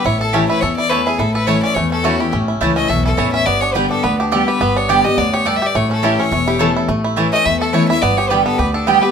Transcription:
0.04 upright bass A1, steel-string acoustic guitar A2, five-string banjo E4, fiddle C#5
0.20 fiddle A4, five-string banjo A4
0.33 steel-string acoustic guitar E3 A3 C#4 E4, mandolin A3 E4 C#5 A5, five-string banjo C#4, fiddle G4
0.49 five-string banjo E4, fiddle B4
0.61 steel-string acoustic guitar E2, upright bass E2, five-string banjo A4, fiddle C#5
0.76 five-string banjo E4, fiddle D5
0.90 steel-string acoustic guitar E3 A3 C#4 E4, mandolin A3 E4 C#5 A5, five-string banjo A4, fiddle B4
1.06 five-string banjo E4, fiddle G#4
1.19 upright bass A1, steel-string acoustic guitar A2, five-string banjo E4, fiddle A4
1.34 five-string banjo A4, fiddle B4
1.47 steel-string acoustic guitar E3 A3 C#4 E4, mandolin A3 E4 C#5 A5, five-string banjo E4, fiddle C#5
1.63 five-string banjo C#4, fiddle D5
1.74 upright bass E2, steel-string acoustic guitar E2, five-string banjo A3, fiddle C#5
1.92 five-string banjo C#4, fiddle A4
2.04 steel-string acoustic guitar E3 A3 C#4 E4, mandolin A3 E4 C#5 A5, five-string banjo A3, fiddle F#4
2.19 steel-string acoustic guitar C#4 E4, five-string banjo E4, fiddle G4
2.33 upright bass A1, steel-string acoustic guitar A2, five-string banjo C#4
2.48 five-string banjo E4
2.61 upright bass C#2, steel-string acoustic guitar E3 A3 C#4 E4, mandolin A3 E4 C#5 A5, five-string banjo A3
2.76 five-string banjo C#4, fiddle D#5
2.89 upright bass B1, steel-string acoustic guitar E2, five-string banjo A4, fiddle E5
3.05 five-string banjo E4, fiddle A4
3.17 upright bass A1, steel-string acoustic guitar E3 A3 C#4 E4, five-string banjo E3, mandolin A3 E4 C#5 A5, fiddle C#5
3.32 five-string banjo C#4, fiddle E5
3.46 upright bass G1, steel-string acoustic guitar G2, five-string banjo B3, fiddle D5
3.61 five-string banjo D4, fiddle C#5
3.73 steel-string acoustic guitar D3 G3 B3 G4, mandolin B3 G4 D5 G5, five-string banjo G4, fiddle B4
3.90 five-string banjo D4, fiddle A4
4.03 upright bass D2, steel-string acoustic guitar D3, five-string banjo B3, fiddle B4
4.20 fiddle D4, five-string banjo G4
4.32 steel-string acoustic guitar D3 G3 B3 G4, mandolin B3 G4 D5 G5, fiddle G4, five-string banjo A4
4.48 five-string banjo G4, fiddle B4
4.61 upright bass G1, steel-string acoustic guitar G2, five-string banjo B3, fiddle B4
4.76 five-string banjo D4, fiddle C#5
4.89 steel-string acoustic guitar D3 G3 B3 G4, mandolin B3 G4 D5 G5, five-string banjo G4, fiddle D5
5.04 steel-string acoustic guitar B3 G4, five-string banjo D4, fiddle D#5
5.18 upright bass D2, steel-string acoustic guitar F#2, five-string banjo B3, fiddle D5
5.34 five-string banjo G4, fiddle C#5
5.45 steel-string acoustic guitar G2, mandolin B3 G4 D5 G5, five-string banjo A4, fiddle D5
5.56 fiddle E5
5.62 five-string banjo G4
5.66 fiddle D5
5.75 upright bass A1, steel-string acoustic guitar A2, five-string banjo A3, fiddle C#5
5.91 five-string banjo C#4, fiddle A4
6.02 steel-string acoustic guitar E3 A3 C#4 E4, mandolin A3 E4 C#5 A5, five-string banjo E4, fiddle G4
6.19 five-string banjo C#4, fiddle C#5
6.32 upright bass E1, steel-string acoustic guitar E2, five-string banjo A3
6.47 five-string banjo E4, resonator guitar played with a steel bar G4
6.59 steel-string acoustic guitar E3 A3 C#4 E4, mandolin A3 E4 C#5 A5, resonator guitar played with a steel bar A4, five-string banjo A4
6.76 five-string banjo E4
6.89 upright bass A1, steel-string acoustic guitar A2, five-string banjo A3
7.04 five-string banjo E4
7.16 steel-string acoustic guitar E3 A3 C#4 E4, five-string banjo E3, mandolin A3 E4 C#5 A5
7.32 five-string banjo A3, fiddle D#5
7.45 steel-string acoustic guitar E2, upright bass E2, five-string banjo E4, fiddle E5
7.60 fiddle A4, five-string banjo A4
7.73 steel-string acoustic guitar E3 A3 C#4 E4, mandolin A3 E4 C#5 A5, five-string banjo A3, fiddle C#5
7.88 steel-string acoustic guitar C#4 E4, five-string banjo E4, fiddle E5
8.02 upright bass G1, steel-string acoustic guitar G2, five-string banjo B3, fiddle D5
8.17 five-string banjo G4, fiddle C#5
8.29 steel-string acoustic guitar D3 G3 B3 G4, five-string banjo G3, mandolin B3 G4 D5 G5, fiddle B4
8.44 five-string banjo B3, fiddle A4
8.58 upright bass D2, steel-string acoustic guitar D3, five-string banjo G4, fiddle B4
8.74 fiddle D4, five-string banjo A4
8.87 steel-string acoustic guitar D3 G3 B3 G4, five-string banjo B3, mandolin B3 G4 D5 G5, fiddle G4
9.02 steel-string acoustic guitar B3 G4, five-string banjo G4, fiddle B4

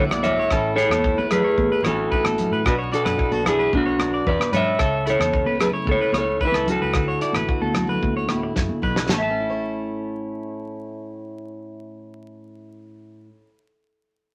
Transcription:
Already playing: steel-string acoustic guitar A2 D3 A3 E4 F#4, transistor combo organ E5 F#5 D6
0.09 fingered electric bass B1, clean electric guitar D5, cross-stick, high conga
0.23 steel-string acoustic guitar F#4, clean electric guitar C#5 E5, closed hi-hat, low conga
0.39 clean electric guitar C#5
0.51 fingered electric bass A1, steel-string acoustic guitar A2 A3 C#4 E4 C#5, clean electric guitar A4, kick, cross-stick
0.76 clean electric guitar G#4 A4 C#5, muted steel-string acoustic guitar stroke, closed hi-hat
0.89 fingered electric bass E2, clean electric guitar A4, cross-stick, high conga
1.04 steel-string acoustic guitar E4, kick
1.16 fingered electric bass A1, clean electric guitar B4, high conga
1.31 steel-string acoustic guitar A3 E4, clean electric guitar G#4 B4, cross-stick, closed hi-hat, low conga
1.44 clean electric guitar C#5
1.58 fingered electric bass A1, kick, high conga
1.72 clean electric guitar B4
1.82 fingered electric bass A1, steel-string acoustic guitar E3, clean electric guitar F#4 C#5, cross-stick, closed hi-hat, high conga
1.86 steel-string acoustic guitar C#4, clean electric guitar A4
2.11 steel-string acoustic guitar E4, clean electric guitar B4, kick
2.24 fingered electric bass A1, clean electric guitar A4, cross-stick, high conga
2.38 steel-string acoustic guitar C#4, closed hi-hat, low conga
2.51 fingered electric bass A2, clean electric guitar B4
2.65 fingered electric bass B1, steel-string acoustic guitar B2 B3 D4 F#4, clean electric guitar F#4 B4, kick, cross-stick
2.79 clean electric guitar C#5
2.91 steel-string acoustic guitar D4, clean electric guitar F#4 A4 D5, closed hi-hat
3.05 fingered electric bass F#2, clean electric guitar B4, cross-stick, high conga
3.18 steel-string acoustic guitar E4, kick
3.32 fingered electric bass B1, steel-string acoustic guitar F#4, clean electric guitar A4, high conga
3.45 steel-string acoustic guitar B3 F#4, clean electric guitar E4 G#4, cross-stick, closed hi-hat, low conga
3.59 clean electric guitar B4
3.73 fingered electric bass B1, clean electric guitar D4 F#4, kick, high conga
3.86 clean electric guitar C#5
3.99 steel-string acoustic guitar F#3 D4, cross-stick, closed hi-hat, high conga
4.14 clean electric guitar D5
4.26 fingered electric bass E2, steel-string acoustic guitar B4, clean electric guitar B4 D5, kick
4.39 cross-stick, high conga
4.52 fingered electric bass G#2, steel-string acoustic guitar D4, clean electric guitar B4 C#5, closed hi-hat, low conga
4.56 clean electric guitar E5
4.79 fingered electric bass C#2, steel-string acoustic guitar C#3, clean electric guitar A4, kick, cross-stick
5.06 steel-string acoustic guitar C#4, clean electric guitar E4 A4, closed hi-hat
5.10 clean electric guitar C#5
5.19 fingered electric bass E2, clean electric guitar A4, cross-stick, high conga
5.34 muted steel-string acoustic guitar stroke, kick
5.46 fingered electric bass C#2, clean electric guitar B4, high conga
5.59 steel-string acoustic guitar A3 E4, clean electric guitar G#4 B4, cross-stick, closed hi-hat, low conga
5.73 clean electric guitar C#5
5.85 fingered electric bass C#2, clean electric guitar A4, kick, high conga
5.91 clean electric guitar C#5
6.01 clean electric guitar B4
6.12 fingered electric bass C#2, steel-string acoustic guitar C#3 C#4, clean electric guitar C#5, cross-stick, closed hi-hat, high conga
6.18 clean electric guitar A4 C#5
6.41 steel-string acoustic guitar E4, clean electric guitar B4, kick
6.45 clean electric guitar E4 B4
6.52 fingered electric bass C#2, clean electric guitar A4, cross-stick, high conga
6.66 steel-string acoustic guitar C#4, closed hi-hat, low conga
6.70 clean electric guitar F#4 A4
6.82 fingered electric bass C#2, clean electric guitar B4
6.94 fingered electric bass D2, steel-string acoustic guitar D3, kick, cross-stick
7.08 clean electric guitar C#5
7.21 steel-string acoustic guitar E4, clean electric guitar D5, closed hi-hat
7.33 fingered electric bass A1, clean electric guitar B4, cross-stick, high conga
7.48 steel-string acoustic guitar F#4, kick
7.61 fingered electric bass D2, clean electric guitar A4, high conga
7.74 steel-string acoustic guitar A3 F#4, cross-stick, closed hi-hat, low conga
7.87 clean electric guitar B4, low conga
8.01 fingered electric bass D2, kick, high conga
8.17 clean electric guitar C#5
8.28 steel-string acoustic guitar A2 E4, cross-stick, closed hi-hat, high conga
8.43 muted clean electric guitar stroke
8.56 fingered electric bass F#2, steel-string acoustic guitar C#3, kick, snare
8.69 high conga
8.82 fingered electric bass B1, steel-string acoustic guitar B2, clean electric guitar B4, kick, low conga
8.96 snare
9.09 fingered electric bass A1, steel-string acoustic guitar A2, clean electric guitar A4, snare, high conga
9.14 clean electric guitar C#5
9.18 steel-string acoustic guitar A3, clean electric guitar E5
9.23 clean electric guitar A5
9.30 steel-string acoustic guitar C#4
9.40 steel-string acoustic guitar E4
9.50 steel-string acoustic guitar C#5

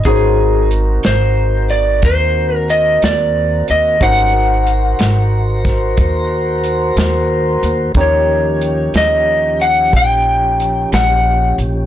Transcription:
0.05 upright bass G#1, tonewheel organ C#4 F#4 C5, upright piano D#4 F#4 A#4 C5, electric slide guitar G#4, kick, closed hi-hat
0.39 tonewheel organ C4 F#4 A#4
0.71 closed hi-hat
1.03 upright bass G#1, electric slide guitar C5, snare, closed hi-hat
1.69 electric slide guitar D5, closed hi-hat
2.02 upright bass D#2, electric slide guitar C5, kick, closed hi-hat
2.56 electric slide guitar A#4
2.69 electric slide guitar D#5, closed hi-hat
3.02 upright bass D#2, electric slide guitar D5, snare, closed hi-hat
3.68 upright bass D#2, electric slide guitar D#5, closed hi-hat
4.00 upright bass G#1, tonewheel organ G3 C#4 C5, upright piano D#4 F#4 A#4 C5, electric slide guitar F#5, kick, closed hi-hat
4.33 tonewheel organ F#4 A#4 C5
4.67 closed hi-hat
4.99 upright bass G#1, snare, closed hi-hat
5.65 kick, snare, closed hi-hat
5.97 upright bass D#2, kick, closed hi-hat
6.64 closed hi-hat
6.97 upright bass D#2, snare, closed hi-hat
7.63 upright bass D#2, closed hi-hat
7.95 upright bass D#2, tonewheel organ F3 C#4 G4, upright piano D#4 G4 A#4 C#5, kick, closed hi-hat
8.01 electric slide guitar C#5
8.61 closed hi-hat
8.94 upright bass D#2, electric slide guitar D#5, snare, closed hi-hat
9.61 electric slide guitar F#5, closed hi-hat
9.93 upright bass A#1, electric slide guitar G5, kick, snare, closed hi-hat
10.60 closed hi-hat
10.92 upright bass A#1, electric slide guitar F#5, snare, closed hi-hat
11.58 upright bass A#1, closed hi-hat

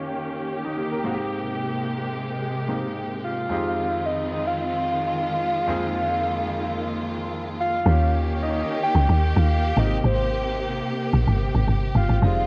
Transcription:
Already playing: grand piano D#3 A#3 C#4 F4 G4, string section D#3 A#3 C#4 G4
0.65 grand piano D#4
0.78 grand piano G4
0.92 grand piano A#4
1.03 grand piano G#2 A#3 C4 D#4 F#4, string section C3 G#3
1.13 grand piano G4
2.68 grand piano G#2 A#3 C4 D#4 G4
3.24 soft synth lead F5
3.49 grand piano F2 G#3 C4 D#4 G4, string section D#3 G#3 C4 F4
4.06 soft synth lead D#5
4.33 soft synth lead D#5
4.47 soft synth lead F5
4.60 soft synth lead F5
5.67 grand piano F2 G#3 C4 D#4 G#4, string section A#3
7.60 soft synth lead F5
7.85 log drum bass D#2, string section D#3 A#3 C#4 G4, grand piano A#3 C#4 F4 G4
8.42 soft synth lead D#5
8.84 soft synth lead G5
8.95 log drum bass C#2
9.09 log drum bass D#2
9.37 log drum bass D#2, soft synth lead F5
9.76 log drum bass G#1, string section C3, grand piano A#3 C4 D#4 F4, soft synth lead D#5
9.86 grand piano G4
10.04 log drum bass G#1, soft synth lead C5
11.13 log drum bass A#1
11.27 log drum bass G1
11.55 log drum bass G#1
11.68 log drum bass G1
11.95 log drum bass G1, soft synth lead F5
12.09 log drum bass G#1
12.22 log drum bass F1, string section D#3 C4 F4, grand piano G3 G#3 C4 D#4

